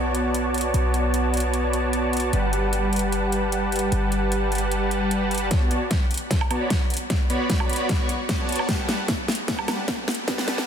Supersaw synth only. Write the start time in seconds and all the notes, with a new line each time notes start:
Already playing: B3 F#4 C#5 D5 A5
2.33 G3 G4 B4 F#5 A5
5.71 B3 F#4 C#5 D5 A5
6.50 B3 F#4 C#5 D5 A5
6.61 B3 F#4 C#5 D5 B5
7.30 B3 F#4 C#5 D5 B5
8.00 B3 F#4 C#5 D5 C#6
8.39 B3 F#4 C#5 D5 A5
8.69 G3 G4 B4
8.89 G3 G4 B4 F#5 A5
9.48 G3 G4 B4 F#5 A5
9.68 G3 G4 B4 F#5 A5
10.28 G3 G4 B4 F#5 A5
10.48 G3 G4 B4 F#5 A5